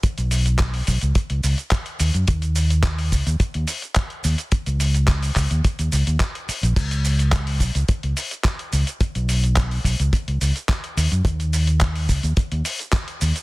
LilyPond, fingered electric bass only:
\new Staff \with { instrumentName = "Fingered electric bass" } { \clef bass \time 4/4 \key ces \lydian \tempo 4 = 107 r16 b,,4 r16 b,,16 cis,16 r16 cis,16 cis,16 r8. ees,16 ges,16 | ees,4. des,16 ees,16 r16 ees,16 r4 ees,16 r16 | r16 des,4 r16 des,16 ees,16 r16 ees,16 des,16 ees,16 r8. bes,,16 | cis,4. b,,16 cis,16 r16 cis,16 r4 cis,16 r16 |
r16 b,,4 r16 b,,16 cis,16 r16 cis,16 cis,16 r8. ees,16 ges,16 | ees,4. des,16 ees,16 r16 ees,16 r4 ees,16 r16 | }